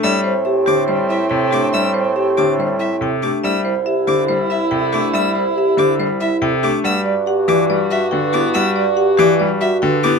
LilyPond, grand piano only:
\new Staff \with { instrumentName = "Grand piano" } { \clef bass \time 4/4 \key a \dorian \tempo 4 = 141 g8 r4 d8 g8 r8 c8 a8 | g8 r4 d8 g8 r8 c8 a8 | g8 r4 d8 g8 r8 c8 a8 | g8 r4 d8 g8 r8 c8 a8 |
g8 r4 e8 g8 r8 d8 b8 | g8 r4 e8 g8 r8 d8 b8 | }